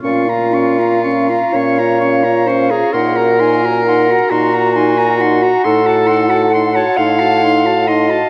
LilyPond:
<<
  \new Staff \with { instrumentName = "Oboe" } { \time 6/8 \key bes \minor \tempo 4. = 44 des'''16 bes''16 des'''16 bes''16 des'''16 bes''16 des'''16 bes''16 des'''16 bes''16 des'''16 bes''16 | c'''16 bes''16 c'''16 bes''16 c'''16 bes''16 c'''16 bes''16 c'''16 bes''16 c'''16 bes''16 | c'''16 a''16 c'''16 a''16 c'''16 a''16 c'''16 a''16 c'''16 a''16 c'''16 a''16 | }
  \new Staff \with { instrumentName = "Flute" } { \time 6/8 \key bes \minor f''2. | ges''8 aes''8 ges''8 bes''8 aes''8 ges''8~ | ges''2~ ges''8 r8 | }
  \new Staff \with { instrumentName = "Clarinet" } { \time 6/8 \key bes \minor f'4. des''4 c''16 aes'16 | bes'4. ges'4. | a'4~ a'16 des''16 f''4 ees''8 | }
  \new Staff \with { instrumentName = "French horn" } { \time 6/8 \key bes \minor des'16 f'16 des'16 f'16 des'16 f'16 des'16 f'16 des'16 f'16 des'16 f'16 | ees'16 ges'16 ees'16 ges'16 ees'16 ges'16 ees'16 ges'16 ees'16 ges'16 ees'16 ges'16 | ees'16 fis'16 ees'16 fis'16 ees'16 fis'16 ees'16 fis'16 ees'16 fis'16 ees'16 fis'16 | }
  \new Staff \with { instrumentName = "Bassoon" } { \clef bass \time 6/8 \key bes \minor bes,4. bes,4. | bes,4. bes,4. | a,4. a,4. | }
>>